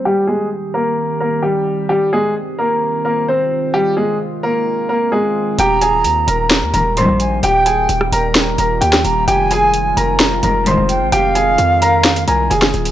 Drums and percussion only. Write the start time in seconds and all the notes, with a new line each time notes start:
5.59 closed hi-hat
5.81 closed hi-hat
6.04 closed hi-hat
6.28 closed hi-hat
6.51 snare, closed hi-hat
6.74 closed hi-hat
6.97 closed hi-hat
7.20 closed hi-hat
7.43 closed hi-hat
7.66 closed hi-hat
7.89 closed hi-hat
8.01 cross-stick
8.13 closed hi-hat
8.35 snare, closed hi-hat
8.58 closed hi-hat
8.82 closed hi-hat
8.93 cross-stick, snare
9.04 closed hi-hat
9.28 closed hi-hat
9.51 closed hi-hat
9.74 closed hi-hat
9.97 closed hi-hat
10.20 snare, closed hi-hat
10.43 closed hi-hat
10.66 closed hi-hat
10.89 closed hi-hat
11.12 closed hi-hat
11.35 closed hi-hat
11.58 closed hi-hat
11.82 closed hi-hat
12.05 snare, closed hi-hat
12.16 closed hi-hat
12.28 closed hi-hat
12.51 closed hi-hat
12.62 cross-stick, snare
12.74 closed hi-hat
12.85 closed hi-hat